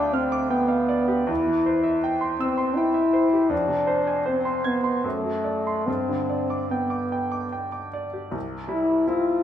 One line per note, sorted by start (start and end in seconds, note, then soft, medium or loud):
0.00 1.26 D2 soft
0.00 1.32 D3 soft
0.00 0.14 D4 medium
0.00 0.89 D5 soft
0.00 0.68 F5 soft
0.00 0.51 G5 soft
0.00 0.25 D6 soft
0.13 0.50 C4 medium
0.13 0.43 F6 soft
0.32 0.62 D6 soft
0.49 1.27 B3 medium
0.49 0.82 G5 soft
0.68 1.01 F5 soft
0.89 1.21 D5 soft
1.08 1.28 G4 soft
1.27 3.47 E2 soft
1.27 2.02 E4 medium
1.47 1.77 E3 soft
1.66 1.96 C5 soft
1.83 2.14 E5 soft
2.04 2.33 G5 soft
2.21 2.50 C6 soft
2.39 2.77 C4 medium
2.39 2.69 E6 soft
2.58 2.87 C6 soft
2.76 3.52 E4 medium
2.76 3.07 G5 soft
2.94 3.25 E5 soft
3.13 3.44 C5 soft
3.33 3.52 G4 soft
3.49 4.99 F2 soft
3.49 4.25 D4 medium
3.68 3.99 C3 soft
3.87 4.18 C5 soft
4.07 4.37 G#5 soft
4.26 4.67 C4 medium
4.26 4.57 C5 soft
4.45 4.77 C6 soft
4.64 5.04 B3 medium
4.64 4.96 G#6 soft
4.84 5.04 C6 soft
5.04 5.84 F#2 soft
5.04 5.88 A3 medium
5.24 5.57 F#3 soft
5.44 5.78 D5 soft
5.67 5.87 C6 soft
5.86 8.31 G2 soft
5.86 6.72 C4 medium
6.09 6.43 D3 soft
6.30 6.63 D5 soft
6.50 6.84 D6 soft
6.70 7.54 B3 soft
6.70 7.05 G5 soft
6.90 7.25 D6 soft
7.12 7.46 G5 soft
7.32 7.66 D6 soft
7.53 7.86 G5 soft
7.72 8.07 D6 soft
7.93 8.26 D5 soft
8.13 8.34 G4 soft
8.31 9.43 C2 soft
8.68 9.02 G3 soft
8.68 9.02 E4 soft
8.68 9.09 E4 medium
9.07 9.40 C4 soft
9.07 9.40 E4 soft
9.07 9.43 F4 medium